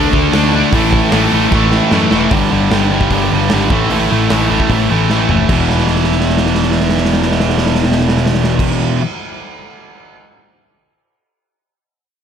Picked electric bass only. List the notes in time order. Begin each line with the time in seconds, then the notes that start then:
0.13 D2
0.34 D2
0.72 A1
1.13 A1
1.33 A1
1.51 A1
1.92 F#2
2.12 E1
2.31 G1
2.51 G1
2.71 G1
3.10 G1
3.32 G1
3.53 G#1
3.70 A1
3.90 A1
4.11 A1
4.30 A1
4.50 A1
4.69 A1
4.91 A1
5.10 A1
5.30 F#1
5.49 E1